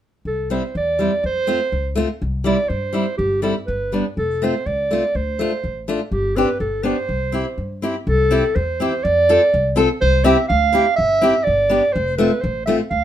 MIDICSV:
0, 0, Header, 1, 4, 480
1, 0, Start_track
1, 0, Key_signature, 0, "major"
1, 0, Tempo, 489396
1, 246, Time_signature, 2, 2, 24, 8
1, 8402, Tempo, 483481
1, 12844, End_track
2, 0, Start_track
2, 0, Title_t, "Clarinet"
2, 0, Program_c, 0, 71
2, 264, Note_on_c, 0, 69, 78
2, 483, Note_off_c, 0, 69, 0
2, 499, Note_on_c, 0, 72, 59
2, 719, Note_off_c, 0, 72, 0
2, 756, Note_on_c, 0, 74, 80
2, 1190, Note_off_c, 0, 74, 0
2, 1234, Note_on_c, 0, 72, 101
2, 1897, Note_off_c, 0, 72, 0
2, 2419, Note_on_c, 0, 74, 80
2, 2637, Note_on_c, 0, 72, 80
2, 2652, Note_off_c, 0, 74, 0
2, 3108, Note_off_c, 0, 72, 0
2, 3114, Note_on_c, 0, 67, 87
2, 3340, Note_off_c, 0, 67, 0
2, 3355, Note_on_c, 0, 69, 61
2, 3464, Note_off_c, 0, 69, 0
2, 3589, Note_on_c, 0, 71, 73
2, 3936, Note_off_c, 0, 71, 0
2, 4102, Note_on_c, 0, 69, 80
2, 4350, Note_on_c, 0, 72, 71
2, 4365, Note_off_c, 0, 69, 0
2, 4575, Note_on_c, 0, 74, 75
2, 4589, Note_off_c, 0, 72, 0
2, 5059, Note_on_c, 0, 72, 86
2, 5074, Note_off_c, 0, 74, 0
2, 5772, Note_off_c, 0, 72, 0
2, 5995, Note_on_c, 0, 67, 80
2, 6238, Note_on_c, 0, 71, 79
2, 6253, Note_off_c, 0, 67, 0
2, 6469, Note_off_c, 0, 71, 0
2, 6475, Note_on_c, 0, 69, 75
2, 6699, Note_on_c, 0, 72, 88
2, 6713, Note_off_c, 0, 69, 0
2, 7673, Note_off_c, 0, 72, 0
2, 7917, Note_on_c, 0, 69, 100
2, 8388, Note_on_c, 0, 72, 85
2, 8403, Note_off_c, 0, 69, 0
2, 8868, Note_on_c, 0, 74, 109
2, 8883, Note_off_c, 0, 72, 0
2, 9592, Note_off_c, 0, 74, 0
2, 9836, Note_on_c, 0, 72, 108
2, 10071, Note_on_c, 0, 76, 87
2, 10085, Note_off_c, 0, 72, 0
2, 10302, Note_off_c, 0, 76, 0
2, 10308, Note_on_c, 0, 77, 95
2, 10760, Note_off_c, 0, 77, 0
2, 10780, Note_on_c, 0, 76, 109
2, 11253, Note_on_c, 0, 74, 91
2, 11268, Note_off_c, 0, 76, 0
2, 11735, Note_on_c, 0, 72, 94
2, 11750, Note_off_c, 0, 74, 0
2, 11975, Note_off_c, 0, 72, 0
2, 11981, Note_on_c, 0, 71, 77
2, 12215, Note_on_c, 0, 72, 73
2, 12230, Note_off_c, 0, 71, 0
2, 12457, Note_off_c, 0, 72, 0
2, 12463, Note_on_c, 0, 76, 75
2, 12576, Note_off_c, 0, 76, 0
2, 12709, Note_on_c, 0, 77, 91
2, 12844, Note_off_c, 0, 77, 0
2, 12844, End_track
3, 0, Start_track
3, 0, Title_t, "Steel-string acoustic guitar"
3, 0, Program_c, 1, 25
3, 491, Note_on_c, 1, 55, 58
3, 498, Note_on_c, 1, 60, 52
3, 502, Note_on_c, 1, 64, 58
3, 600, Note_off_c, 1, 55, 0
3, 603, Note_off_c, 1, 60, 0
3, 605, Note_off_c, 1, 64, 0
3, 969, Note_on_c, 1, 55, 58
3, 978, Note_on_c, 1, 60, 51
3, 984, Note_on_c, 1, 64, 50
3, 1079, Note_off_c, 1, 55, 0
3, 1083, Note_off_c, 1, 60, 0
3, 1086, Note_off_c, 1, 64, 0
3, 1442, Note_on_c, 1, 57, 59
3, 1446, Note_on_c, 1, 60, 63
3, 1457, Note_on_c, 1, 65, 70
3, 1552, Note_off_c, 1, 57, 0
3, 1554, Note_off_c, 1, 60, 0
3, 1560, Note_off_c, 1, 65, 0
3, 1917, Note_on_c, 1, 57, 66
3, 1926, Note_on_c, 1, 60, 59
3, 1935, Note_on_c, 1, 65, 79
3, 2027, Note_off_c, 1, 57, 0
3, 2032, Note_off_c, 1, 60, 0
3, 2034, Note_off_c, 1, 65, 0
3, 2395, Note_on_c, 1, 55, 61
3, 2406, Note_on_c, 1, 60, 56
3, 2413, Note_on_c, 1, 64, 72
3, 2504, Note_off_c, 1, 55, 0
3, 2510, Note_off_c, 1, 60, 0
3, 2513, Note_off_c, 1, 64, 0
3, 2870, Note_on_c, 1, 55, 56
3, 2878, Note_on_c, 1, 60, 47
3, 2884, Note_on_c, 1, 64, 59
3, 2982, Note_off_c, 1, 55, 0
3, 2986, Note_off_c, 1, 60, 0
3, 2989, Note_off_c, 1, 64, 0
3, 3355, Note_on_c, 1, 55, 58
3, 3361, Note_on_c, 1, 60, 56
3, 3368, Note_on_c, 1, 64, 69
3, 3465, Note_off_c, 1, 55, 0
3, 3468, Note_off_c, 1, 60, 0
3, 3472, Note_off_c, 1, 64, 0
3, 3847, Note_on_c, 1, 55, 48
3, 3854, Note_on_c, 1, 59, 43
3, 3862, Note_on_c, 1, 62, 58
3, 3956, Note_off_c, 1, 55, 0
3, 3960, Note_off_c, 1, 59, 0
3, 3964, Note_off_c, 1, 62, 0
3, 4333, Note_on_c, 1, 57, 57
3, 4342, Note_on_c, 1, 60, 60
3, 4351, Note_on_c, 1, 65, 66
3, 4443, Note_off_c, 1, 57, 0
3, 4447, Note_off_c, 1, 60, 0
3, 4452, Note_off_c, 1, 65, 0
3, 4813, Note_on_c, 1, 57, 53
3, 4818, Note_on_c, 1, 60, 51
3, 4833, Note_on_c, 1, 65, 62
3, 4922, Note_off_c, 1, 57, 0
3, 4925, Note_off_c, 1, 60, 0
3, 4932, Note_off_c, 1, 65, 0
3, 5287, Note_on_c, 1, 57, 58
3, 5300, Note_on_c, 1, 62, 51
3, 5305, Note_on_c, 1, 65, 70
3, 5398, Note_off_c, 1, 57, 0
3, 5404, Note_off_c, 1, 62, 0
3, 5407, Note_off_c, 1, 65, 0
3, 5766, Note_on_c, 1, 57, 62
3, 5772, Note_on_c, 1, 62, 60
3, 5779, Note_on_c, 1, 65, 69
3, 5874, Note_off_c, 1, 57, 0
3, 5877, Note_off_c, 1, 62, 0
3, 5880, Note_off_c, 1, 65, 0
3, 6242, Note_on_c, 1, 60, 57
3, 6250, Note_on_c, 1, 62, 51
3, 6258, Note_on_c, 1, 67, 74
3, 6349, Note_off_c, 1, 60, 0
3, 6353, Note_off_c, 1, 62, 0
3, 6358, Note_off_c, 1, 67, 0
3, 6702, Note_on_c, 1, 59, 63
3, 6712, Note_on_c, 1, 62, 52
3, 6719, Note_on_c, 1, 67, 54
3, 6818, Note_off_c, 1, 59, 0
3, 6823, Note_off_c, 1, 62, 0
3, 6827, Note_off_c, 1, 67, 0
3, 7182, Note_on_c, 1, 60, 58
3, 7194, Note_on_c, 1, 64, 53
3, 7203, Note_on_c, 1, 67, 60
3, 7299, Note_off_c, 1, 60, 0
3, 7304, Note_off_c, 1, 64, 0
3, 7309, Note_off_c, 1, 67, 0
3, 7672, Note_on_c, 1, 60, 58
3, 7681, Note_on_c, 1, 64, 53
3, 7685, Note_on_c, 1, 67, 70
3, 7786, Note_off_c, 1, 60, 0
3, 7791, Note_off_c, 1, 64, 0
3, 7793, Note_off_c, 1, 67, 0
3, 8147, Note_on_c, 1, 60, 71
3, 8154, Note_on_c, 1, 64, 63
3, 8161, Note_on_c, 1, 67, 67
3, 8263, Note_off_c, 1, 60, 0
3, 8267, Note_off_c, 1, 64, 0
3, 8270, Note_off_c, 1, 67, 0
3, 8634, Note_on_c, 1, 60, 57
3, 8644, Note_on_c, 1, 64, 63
3, 8651, Note_on_c, 1, 67, 67
3, 8748, Note_off_c, 1, 60, 0
3, 8753, Note_off_c, 1, 64, 0
3, 8756, Note_off_c, 1, 67, 0
3, 9121, Note_on_c, 1, 60, 65
3, 9127, Note_on_c, 1, 65, 69
3, 9133, Note_on_c, 1, 69, 79
3, 9230, Note_off_c, 1, 60, 0
3, 9233, Note_off_c, 1, 65, 0
3, 9236, Note_off_c, 1, 69, 0
3, 9584, Note_on_c, 1, 60, 69
3, 9593, Note_on_c, 1, 65, 70
3, 9598, Note_on_c, 1, 69, 78
3, 9699, Note_off_c, 1, 60, 0
3, 9703, Note_off_c, 1, 65, 0
3, 9706, Note_off_c, 1, 69, 0
3, 10067, Note_on_c, 1, 60, 82
3, 10073, Note_on_c, 1, 64, 66
3, 10080, Note_on_c, 1, 67, 76
3, 10180, Note_off_c, 1, 60, 0
3, 10182, Note_off_c, 1, 64, 0
3, 10186, Note_off_c, 1, 67, 0
3, 10546, Note_on_c, 1, 60, 64
3, 10554, Note_on_c, 1, 64, 60
3, 10566, Note_on_c, 1, 67, 70
3, 10660, Note_off_c, 1, 60, 0
3, 10664, Note_off_c, 1, 64, 0
3, 10670, Note_off_c, 1, 67, 0
3, 11031, Note_on_c, 1, 60, 68
3, 11037, Note_on_c, 1, 64, 59
3, 11050, Note_on_c, 1, 67, 73
3, 11144, Note_off_c, 1, 60, 0
3, 11147, Note_off_c, 1, 64, 0
3, 11153, Note_off_c, 1, 67, 0
3, 11508, Note_on_c, 1, 59, 57
3, 11514, Note_on_c, 1, 62, 52
3, 11522, Note_on_c, 1, 67, 65
3, 11624, Note_off_c, 1, 59, 0
3, 11627, Note_off_c, 1, 62, 0
3, 11631, Note_off_c, 1, 67, 0
3, 11994, Note_on_c, 1, 57, 76
3, 12001, Note_on_c, 1, 60, 58
3, 12007, Note_on_c, 1, 65, 71
3, 12109, Note_off_c, 1, 57, 0
3, 12112, Note_off_c, 1, 60, 0
3, 12115, Note_off_c, 1, 65, 0
3, 12479, Note_on_c, 1, 57, 64
3, 12485, Note_on_c, 1, 60, 56
3, 12495, Note_on_c, 1, 65, 63
3, 12591, Note_off_c, 1, 57, 0
3, 12594, Note_off_c, 1, 60, 0
3, 12599, Note_off_c, 1, 65, 0
3, 12844, End_track
4, 0, Start_track
4, 0, Title_t, "Upright bass"
4, 0, Program_c, 2, 32
4, 247, Note_on_c, 2, 36, 57
4, 562, Note_off_c, 2, 36, 0
4, 736, Note_on_c, 2, 40, 70
4, 1046, Note_off_c, 2, 40, 0
4, 1214, Note_on_c, 2, 41, 69
4, 1521, Note_off_c, 2, 41, 0
4, 1690, Note_on_c, 2, 37, 69
4, 1998, Note_off_c, 2, 37, 0
4, 2174, Note_on_c, 2, 36, 78
4, 2480, Note_off_c, 2, 36, 0
4, 2645, Note_on_c, 2, 43, 65
4, 2954, Note_off_c, 2, 43, 0
4, 3127, Note_on_c, 2, 31, 79
4, 3438, Note_off_c, 2, 31, 0
4, 3610, Note_on_c, 2, 31, 73
4, 3925, Note_off_c, 2, 31, 0
4, 4090, Note_on_c, 2, 29, 72
4, 4406, Note_off_c, 2, 29, 0
4, 4574, Note_on_c, 2, 37, 69
4, 4886, Note_off_c, 2, 37, 0
4, 5049, Note_on_c, 2, 38, 62
4, 5361, Note_off_c, 2, 38, 0
4, 5528, Note_on_c, 2, 33, 63
4, 5837, Note_off_c, 2, 33, 0
4, 5997, Note_on_c, 2, 31, 72
4, 6309, Note_off_c, 2, 31, 0
4, 6474, Note_on_c, 2, 31, 73
4, 6786, Note_off_c, 2, 31, 0
4, 6952, Note_on_c, 2, 36, 69
4, 7267, Note_off_c, 2, 36, 0
4, 7431, Note_on_c, 2, 43, 64
4, 7748, Note_off_c, 2, 43, 0
4, 7913, Note_on_c, 2, 36, 77
4, 8228, Note_off_c, 2, 36, 0
4, 8392, Note_on_c, 2, 40, 81
4, 8709, Note_off_c, 2, 40, 0
4, 8879, Note_on_c, 2, 41, 81
4, 9191, Note_off_c, 2, 41, 0
4, 9365, Note_on_c, 2, 36, 80
4, 9673, Note_off_c, 2, 36, 0
4, 9842, Note_on_c, 2, 36, 84
4, 10152, Note_off_c, 2, 36, 0
4, 10320, Note_on_c, 2, 38, 89
4, 10632, Note_off_c, 2, 38, 0
4, 10803, Note_on_c, 2, 31, 82
4, 11115, Note_off_c, 2, 31, 0
4, 11285, Note_on_c, 2, 31, 72
4, 11598, Note_off_c, 2, 31, 0
4, 11766, Note_on_c, 2, 29, 79
4, 12080, Note_off_c, 2, 29, 0
4, 12244, Note_on_c, 2, 33, 77
4, 12556, Note_off_c, 2, 33, 0
4, 12712, Note_on_c, 2, 38, 70
4, 12844, Note_off_c, 2, 38, 0
4, 12844, End_track
0, 0, End_of_file